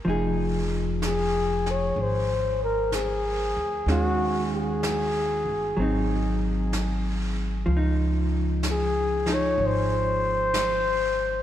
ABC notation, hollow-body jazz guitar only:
X:1
M:4/4
L:1/8
Q:"Swing" 1/4=63
K:Db
V:1 name="Hollow-body jazz guitar"
[F,EA]8 | [E,A,DG]4 [G,CE]4 | [F,E]3 [F,E]4- [F,E] |]